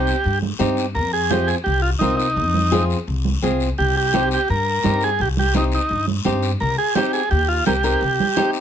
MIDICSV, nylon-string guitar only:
0, 0, Header, 1, 2, 480
1, 0, Start_track
1, 0, Key_signature, -3, "minor"
1, 0, Tempo, 352734
1, 1301, Time_signature, 4, 2, 24, 8
1, 11707, End_track
2, 0, Start_track
2, 0, Title_t, "Nylon-string guitar"
2, 0, Program_c, 0, 24
2, 0, Note_on_c, 0, 60, 64
2, 0, Note_on_c, 0, 63, 59
2, 0, Note_on_c, 0, 67, 72
2, 191, Note_off_c, 0, 60, 0
2, 194, Note_off_c, 0, 63, 0
2, 197, Note_off_c, 0, 67, 0
2, 801, Note_on_c, 0, 60, 73
2, 808, Note_on_c, 0, 63, 69
2, 811, Note_on_c, 0, 67, 84
2, 1147, Note_off_c, 0, 60, 0
2, 1150, Note_off_c, 0, 63, 0
2, 1152, Note_off_c, 0, 67, 0
2, 1774, Note_on_c, 0, 60, 66
2, 1780, Note_on_c, 0, 65, 59
2, 1788, Note_on_c, 0, 68, 69
2, 2114, Note_off_c, 0, 60, 0
2, 2118, Note_off_c, 0, 65, 0
2, 2120, Note_off_c, 0, 68, 0
2, 2734, Note_on_c, 0, 60, 66
2, 2740, Note_on_c, 0, 65, 58
2, 2742, Note_on_c, 0, 70, 70
2, 3075, Note_off_c, 0, 60, 0
2, 3076, Note_off_c, 0, 65, 0
2, 3079, Note_off_c, 0, 70, 0
2, 3692, Note_on_c, 0, 60, 73
2, 3702, Note_on_c, 0, 65, 69
2, 3703, Note_on_c, 0, 68, 89
2, 4034, Note_off_c, 0, 60, 0
2, 4036, Note_off_c, 0, 65, 0
2, 4039, Note_off_c, 0, 68, 0
2, 4660, Note_on_c, 0, 60, 75
2, 4669, Note_on_c, 0, 65, 63
2, 4675, Note_on_c, 0, 68, 87
2, 4998, Note_off_c, 0, 60, 0
2, 5002, Note_off_c, 0, 65, 0
2, 5005, Note_off_c, 0, 68, 0
2, 5623, Note_on_c, 0, 60, 69
2, 5629, Note_on_c, 0, 63, 63
2, 5637, Note_on_c, 0, 67, 72
2, 5959, Note_off_c, 0, 60, 0
2, 5963, Note_off_c, 0, 63, 0
2, 5965, Note_off_c, 0, 67, 0
2, 6576, Note_on_c, 0, 60, 62
2, 6590, Note_on_c, 0, 63, 58
2, 6594, Note_on_c, 0, 67, 67
2, 6916, Note_off_c, 0, 60, 0
2, 6923, Note_off_c, 0, 63, 0
2, 6923, Note_off_c, 0, 67, 0
2, 7545, Note_on_c, 0, 60, 64
2, 7553, Note_on_c, 0, 63, 57
2, 7558, Note_on_c, 0, 67, 71
2, 7881, Note_off_c, 0, 60, 0
2, 7882, Note_off_c, 0, 63, 0
2, 7883, Note_off_c, 0, 67, 0
2, 8505, Note_on_c, 0, 60, 76
2, 8510, Note_on_c, 0, 63, 69
2, 8516, Note_on_c, 0, 67, 82
2, 8839, Note_off_c, 0, 60, 0
2, 8840, Note_off_c, 0, 63, 0
2, 8844, Note_off_c, 0, 67, 0
2, 9467, Note_on_c, 0, 60, 72
2, 9479, Note_on_c, 0, 63, 65
2, 9487, Note_on_c, 0, 67, 72
2, 9799, Note_off_c, 0, 60, 0
2, 9805, Note_off_c, 0, 63, 0
2, 9809, Note_off_c, 0, 67, 0
2, 10426, Note_on_c, 0, 60, 62
2, 10433, Note_on_c, 0, 63, 57
2, 10437, Note_on_c, 0, 70, 69
2, 10506, Note_off_c, 0, 60, 0
2, 10510, Note_off_c, 0, 63, 0
2, 10511, Note_off_c, 0, 70, 0
2, 10654, Note_on_c, 0, 60, 63
2, 10662, Note_on_c, 0, 63, 56
2, 10668, Note_on_c, 0, 70, 71
2, 10908, Note_off_c, 0, 60, 0
2, 10910, Note_off_c, 0, 63, 0
2, 10914, Note_off_c, 0, 70, 0
2, 11380, Note_on_c, 0, 60, 79
2, 11385, Note_on_c, 0, 63, 72
2, 11389, Note_on_c, 0, 67, 88
2, 11707, Note_off_c, 0, 60, 0
2, 11707, Note_off_c, 0, 63, 0
2, 11707, Note_off_c, 0, 67, 0
2, 11707, End_track
0, 0, End_of_file